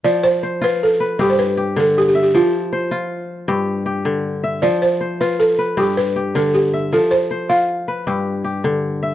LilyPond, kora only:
<<
  \new Staff \with { instrumentName = "Kora" } { \time 12/8 \key f \lydian \tempo 4. = 105 r4 c''4. b'8 g'4 g'4. e''8~ | e''8 r8 c''4. r8 g'4 g'4. e''8~ | e''8 r8 c''4. b'8 g'4 g'4. e''8~ | e''8 r8 c''4. b'8 g'4 g'4. e''8 | }
  \new Staff \with { instrumentName = "Kora" } { \clef bass \time 12/8 \key f \lydian f4 r8 f'4 r8 g,4 r8 d4 r8 | f4 r8 f'4 r8 g,4 r8 d4 r8 | f4 r8 f'4 r8 g,4 r8 d4 r8 | f4 r8 f'4 r8 g,4 r8 d4 r8 | }
>>